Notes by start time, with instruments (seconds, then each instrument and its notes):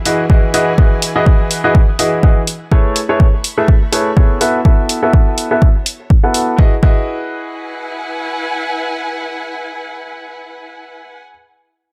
Already playing: string section E4 B4 E5 F#5 G#5
0.05 grand piano E3 E4 F#4 G#4 B4 D#5, open hi-hat
0.30 grand piano E3 E4 F#4 G#4 B4 D#5, kick
0.54 grand piano E3 E4 F#4 G#4 B4 D#5, open hi-hat
0.78 grand piano E3 E4 F#4 G#4 B4 D#5, kick
1.02 open hi-hat
1.16 grand piano E3 E4 F#4 G#4 B4 D#5
1.26 kick
1.51 open hi-hat
1.64 grand piano E3 E4 F#4 G#4 B4 D#5
1.75 kick
1.99 grand piano E3 E4 F#4 G#4 B4 D#5, open hi-hat
2.23 grand piano E3 E4 F#4 G#4 B4 D#5, kick
2.47 open hi-hat
2.72 grand piano A3 E4 G#4 A4 B4 C#5, string section A4, kick
2.93 string section B5, open hi-hat
2.98 string section E5 C#6
3.09 grand piano A3 E4 G#4 A4 B4 C#5
3.20 kick
3.44 open hi-hat
3.57 grand piano A3 E4 G#4 A4 B4 E5
3.68 kick
3.92 grand piano A3 E4 G#4 A4 B4 C#5, open hi-hat
4.17 grand piano B3 E4 G#4 A4 B4 C#5, kick
4.41 grand piano B3 E4 F#4 A4 B4 E5, string section B3, open hi-hat
4.62 grand piano B3 E4 F#4 A4 B4 E5, string section F#4, kick
4.77 string section C#5
4.89 open hi-hat
5.03 grand piano B3 E4 F#4 A4 B4 E5
5.13 kick
5.38 open hi-hat
5.51 grand piano B3 E4 F#4 A4 B4 E5
5.62 kick
5.86 open hi-hat
6.10 kick
6.24 grand piano B3 E4 F#4 A4 B4 F#5
6.34 open hi-hat
6.58 grand piano E4 F#4 G#4 B4 D#5, string section E4, kick
6.67 string section B4
6.74 string section F#5
6.80 grand piano E4 F#4 G#4 B4 D#5, string section G#5, kick